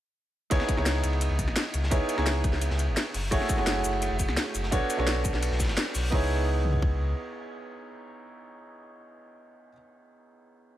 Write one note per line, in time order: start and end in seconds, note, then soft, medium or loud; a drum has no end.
0.50 0.59 C#2 loud
0.50 0.74 B3 medium
0.50 0.75 D#4 medium
0.50 0.75 E4 medium
0.50 0.75 G#4 medium
0.50 0.75 C#5 loud
0.50 kick loud
0.50 closed hi-hat loud
0.50 ride loud
0.60 snare medium
0.60 snare soft
0.69 kick loud
0.69 closed hi-hat medium
0.69 ride medium
0.76 1.02 C#2 medium
0.76 1.88 B3 medium
0.76 1.89 D#4 medium
0.76 1.89 E4 medium
0.76 1.89 G#4 medium
0.76 1.90 C#5 medium
0.76 snare soft
0.86 snare loud
0.86 closed hi-hat medium
0.86 ride medium
1.03 1.29 C#2 medium
1.03 closed hi-hat medium
1.03 ride medium
1.13 ride soft
1.21 closed hi-hat loud
1.21 ride medium
1.30 1.49 C#2 loud
1.39 kick medium
1.39 closed hi-hat medium
1.39 ride medium
1.48 1.55 G#1 medium
1.48 snare soft
1.56 snare loud
1.56 closed hi-hat loud
1.56 ride medium
1.74 1.90 C#2 medium
1.74 closed hi-hat medium
1.74 ride medium
1.83 snare medium
1.91 1.99 C#2 loud
1.91 2.15 B3 medium
1.91 2.15 D#4 medium
1.91 2.15 E4 medium
1.91 2.16 G#4 medium
1.91 2.16 C#5 loud
1.91 kick loud
1.91 closed hi-hat medium
1.91 ride medium
2.09 closed hi-hat medium
2.09 ride medium
2.16 2.43 C#2 medium
2.16 3.12 B3 medium
2.16 3.13 D#4 medium
2.16 3.13 E4 medium
2.16 3.13 G#4 medium
2.16 3.14 C#5 medium
2.16 snare soft
2.26 snare loud
2.26 closed hi-hat medium
2.26 ride medium
2.44 2.69 C#2 medium
2.44 kick loud
2.44 closed hi-hat medium
2.44 ride medium
2.52 snare soft
2.61 closed hi-hat medium
2.61 ride medium
2.70 2.90 C#2 loud
2.70 snare medium
2.79 closed hi-hat medium
2.79 ride medium
2.88 2.96 G#1 medium
2.97 snare loud
2.97 closed hi-hat loud
2.97 ride medium
3.14 3.30 F#1 medium
3.14 closed hi-hat medium
3.14 open hi-hat medium
3.31 3.40 F#1 loud
3.31 3.55 A3 medium
3.31 3.56 E4 medium
3.31 3.56 F#4 medium
3.31 3.56 G#4 medium
3.31 3.56 C#5 loud
3.31 kick loud
3.31 closed hi-hat medium
3.31 ride medium
3.41 snare medium
3.41 snare soft
3.49 kick loud
3.49 closed hi-hat medium
3.49 ride medium
3.49 cabasa medium
3.57 3.83 F#1 medium
3.57 4.69 A3 medium
3.57 4.70 E4 medium
3.57 4.70 F#4 medium
3.57 4.70 G#4 medium
3.57 4.71 C#5 medium
3.57 snare soft
3.67 snare loud
3.67 closed hi-hat medium
3.67 ride medium
3.84 4.09 F#1 medium
3.84 closed hi-hat medium
3.84 ride medium
3.84 cabasa medium
3.93 ride soft
4.02 closed hi-hat medium
4.02 ride medium
4.11 4.30 F#1 loud
4.19 kick medium
4.19 closed hi-hat medium
4.19 ride medium
4.19 cabasa medium
4.28 4.36 C#2 medium
4.28 snare soft
4.37 snare loud
4.37 closed hi-hat medium
4.37 ride medium
4.55 4.70 F#1 medium
4.55 closed hi-hat medium
4.55 ride medium
4.55 cabasa medium
4.63 snare medium
4.71 4.80 B1 loud
4.71 4.95 B3 medium
4.71 4.96 D4 medium
4.71 4.96 F#4 medium
4.71 4.96 A4 medium
4.71 4.97 C#5 loud
4.71 kick loud
4.71 closed hi-hat medium
4.71 ride medium
4.90 closed hi-hat medium
4.90 ride medium
4.90 cabasa medium
4.97 5.23 B1 medium
4.97 6.09 B3 medium
4.97 6.10 D4 medium
4.97 6.10 F#4 medium
4.97 6.10 A4 medium
4.97 6.11 C#5 medium
4.97 snare soft
5.07 snare loud
5.07 closed hi-hat medium
5.07 ride medium
5.25 5.50 B1 medium
5.25 kick loud
5.25 closed hi-hat medium
5.25 ride medium
5.25 cabasa medium
5.33 snare soft
5.42 closed hi-hat medium
5.42 ride medium
5.51 5.70 B1 loud
5.51 snare medium
5.60 kick medium
5.60 snare medium
5.60 closed hi-hat medium
5.60 ride medium
5.60 cabasa medium
5.64 5.76 F#1 medium
5.64 snare medium
5.64 ride medium
5.69 snare loud
5.69 ride medium
5.77 snare loud
5.77 closed hi-hat medium
5.77 ride medium
5.95 6.11 B1 medium
5.95 closed hi-hat medium
5.95 open hi-hat medium
5.95 cabasa medium
6.10 7.14 C#2 medium
6.10 9.69 B3 medium
6.10 9.70 D#4 medium
6.10 9.71 E4 medium
6.10 9.72 G#4 medium
6.10 kick loud
6.14 9.73 C#5 medium
6.65 mid tom medium
6.74 floor tom medium
6.82 kick medium